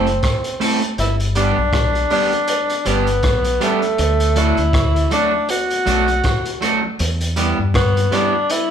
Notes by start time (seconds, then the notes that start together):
Already playing: F#1 C4
0.06 closed hi-hat
0.23 kick, cross-stick, closed hi-hat
0.44 closed hi-hat
0.60 A3 C4 E4 A4, open hi-hat
0.81 muted clean electric guitar stroke, closed hi-hat
0.98 G1 E4, closed hi-hat
1.20 closed hi-hat
1.35 G3 B3 D4 G4, closed hi-hat
1.58 B1
1.73 kick, cross-stick, closed hi-hat
1.95 closed hi-hat
2.10 G3 B3 D4 G4, open hi-hat
2.32 closed hi-hat
2.48 closed hi-hat
2.69 closed hi-hat
2.85 G1 G3 B3 D4 G4, closed hi-hat
3.07 closed hi-hat
3.23 B1, kick, cross-stick, closed hi-hat
3.44 closed hi-hat
3.60 G3 A3 B3 D4 G4, closed hi-hat
3.82 muted clean electric guitar stroke, closed hi-hat
3.98 D2, closed hi-hat
4.20 closed hi-hat
4.36 F#3 A3 D4 E4 F#4, closed hi-hat
4.57 D2, closed hi-hat
4.73 kick, cross-stick, closed hi-hat
4.96 closed hi-hat
5.11 F#3 A3 D4 F#4, closed hi-hat
5.49 F#4, closed hi-hat
5.70 closed hi-hat
5.86 B1 F#3 A3 D4 F#4, closed hi-hat
6.08 closed hi-hat
6.24 kick, cross-stick, closed hi-hat
6.45 closed hi-hat
6.61 F#3 A3 D4 F#4, closed hi-hat
6.83 muted clean electric guitar stroke
6.99 E2, closed hi-hat
7.21 closed hi-hat
7.36 G3 B3 E4 G4, closed hi-hat
7.59 G2
7.74 B3, kick, cross-stick, closed hi-hat
7.97 closed hi-hat
8.11 G3 B3 D4 E4 G4, cross-stick, closed hi-hat
8.50 E4, closed hi-hat